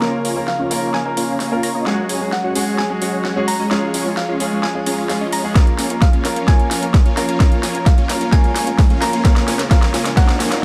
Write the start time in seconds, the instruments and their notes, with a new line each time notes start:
Already playing: string section C#3 F3 A#3 A#4
0.01 grand piano A#3 C#4 F4 A#4, supersaw synth A#3 C#4 F4 C#5 F5, string section D#4, snare
0.25 supersaw synth A#3 C#4 F4 C#5 G#5, open hi-hat
0.36 grand piano A#3 C#4 F4 A#4
0.48 synth pluck F5, snare
0.59 supersaw synth A#3 C#4 F4 C#5 F5
0.70 grand piano A#3 C#4 F4 A#4, open hi-hat
0.82 supersaw synth A#3 C#4 F4 C#5 F5
0.94 synth pluck G#5, snare
1.05 grand piano A#3 C#4 F4 A#4
1.17 supersaw synth A#3 C#4 F4 C#5 F5, open hi-hat
1.40 snare, open hi-hat
1.51 grand piano A#3 C#4 F4 A#4, supersaw synth A#3 C#4 F4 C#5 F5
1.63 synth pluck A#5, open hi-hat
1.75 supersaw synth A#3 C#4 F4 C#5 D#5
1.86 string section F#3 G#3 C#4 G#4 C#5, grand piano G#3 C#4 F#4 G#4, supersaw synth G#3 C#4 F#4 C#5 F#5, snare
2.09 supersaw synth G#3 C#4 F#4 C#5 G#5, open hi-hat
2.20 grand piano G#3 C#4 F#4 G#4
2.32 synth pluck F#5, snare
2.44 supersaw synth G#3 C#4 F#4 C#5 F#5
2.55 grand piano G#3 C#4 F#4 G#4, open hi-hat
2.67 supersaw synth G#3 C#4 F#4 C#5 F#5
2.78 synth pluck G#5, snare
2.89 grand piano G#3 C#4 F#4 G#4
3.02 supersaw synth G#3 C#4 F#4 C#5 F#5, open hi-hat
3.25 snare
3.36 grand piano G#3 C#4 F#4 G#4, supersaw synth G#3 C#4 F#4 C#5 F#5
3.48 synth pluck A#5, open hi-hat
3.59 supersaw synth G#3 C#4 F#4 C#5 D#5
3.70 string section F3 C#4, grand piano G#3 C#4 F4 G#4, supersaw synth G#3 C#4 F4 C#5 F5, snare
3.94 supersaw synth G#3 C#4 F4 C#5 G#5, open hi-hat
4.05 grand piano G#3 C#4 F4 G#4
4.17 synth pluck F5, snare
4.29 supersaw synth G#3 C#4 F4 C#5 F5
4.40 grand piano G#3 C#4 F4 G#4, open hi-hat
4.52 supersaw synth G#3 C#4 F4 C#5 F5
4.63 synth pluck G#5, snare
4.74 grand piano G#3 C#4 F4 G#4
4.86 supersaw synth G#3 C#4 F4 C#5 A#5, open hi-hat
4.98 supersaw synth G#3 C#4 F4 C#5 F5
5.09 grand piano G#3 C#4 F4 G#4, snare, open hi-hat
5.21 supersaw synth G#3 C#4 F4 C#5 D#5
5.33 synth pluck A#5, open hi-hat
5.43 grand piano G#3 C#4 F4 G#4
5.55 grand piano A#3 C#4 F4 A#4, string section A#3 A#4 C#5, supersaw synth A#3 C#4 F4, kick, snare, closed hi-hat, riser
5.67 closed hi-hat
5.79 supersaw synth A#3 C#4 F4 C#5 G#5, snare, open hi-hat
5.90 grand piano A#3 C#4 F4 A#4, closed hi-hat
6.02 synth pluck F5, kick, snare, closed hi-hat
6.13 supersaw synth A#3 C#4 F4 C#5 F5, closed hi-hat
6.24 grand piano A#3 C#4 F4 A#4, snare, open hi-hat
6.36 supersaw synth A#3 C#4 F4 C#5 F5, closed hi-hat
6.47 grand piano A#3 C#4 F4 A#4, synth pluck G#5, kick, snare, closed hi-hat
6.59 closed hi-hat
6.71 supersaw synth A#3 C#4 F4 C#5 G#5, snare, open hi-hat
6.82 grand piano A#3 C#4 F4 A#4, closed hi-hat
6.94 kick, snare, closed hi-hat
7.06 supersaw synth A#3 C#4 F4 C#5 F5, closed hi-hat
7.17 grand piano A#3 C#4 F4 A#4, synth pluck A#5, snare, open hi-hat
7.29 supersaw synth A#3 C#4 F4 C#5 F5, closed hi-hat
7.40 grand piano A#3 C#4 F4 A#4, supersaw synth A#3 C#4 F4 C#5 F5, kick, snare, closed hi-hat
7.52 closed hi-hat
7.63 supersaw synth A#3 C#4 F4 C#5 G#5, snare, open hi-hat
7.74 grand piano A#3 C#4 F4 A#4, closed hi-hat
7.86 synth pluck F5, kick, snare, closed hi-hat
7.98 supersaw synth A#3 C#4 F4 C#5 F5, closed hi-hat
8.09 grand piano A#3 C#4 F4 A#4, snare, open hi-hat
8.21 supersaw synth A#3 C#4 F4 C#5 F5, closed hi-hat
8.32 grand piano A#3 C#4 F4 A#4, supersaw synth A#3 C#4 F4 C#5 F5, synth pluck G#5, kick, snare, closed hi-hat
8.44 closed hi-hat
8.56 supersaw synth A#3 C#4 F4 C#5 G#5, snare, open hi-hat
8.67 grand piano A#3 C#4 F4 A#4, closed hi-hat
8.79 kick, snare, open hi-hat
8.90 supersaw synth A#3 C#4 F4 C#5 F5, closed hi-hat
9.01 grand piano A#3 C#4 F4 A#4, synth pluck A#5, snare, open hi-hat
9.13 supersaw synth A#3 C#4 F4 C#5 F5, closed hi-hat
9.24 string section C#3 G#3 C#4 G#4, grand piano A#3 C#4 F4 A#4, supersaw synth A#3 C#4 F4 C#5 F5, kick, snare, closed hi-hat
9.36 snare, closed hi-hat
9.48 supersaw synth A#3 C#4 F4 C#5 G#5, snare, open hi-hat
9.59 grand piano A#3 C#4 F4 A#4, snare, closed hi-hat
9.70 grand piano A#3 C#4 F4 A#4, supersaw synth A#3 C#4 F4 C#5 F5, synth pluck F5, kick, snare, closed hi-hat
9.82 snare, closed hi-hat
9.94 supersaw synth A#3 C#4 F4 C#5 G#5, snare, open hi-hat
10.05 grand piano A#3 C#4 F4 A#4, snare, closed hi-hat
10.16 grand piano F3 A#3 C#4 A#4, supersaw synth A#3 C#4 F4 C#5 F5, synth pluck F#5, kick, snare, closed hi-hat
10.29 snare, closed hi-hat
10.40 supersaw synth A#3 C#4 F4 C#5 G#5, snare, open hi-hat
10.51 grand piano A#3 C#4 F4 A#4, snare, closed hi-hat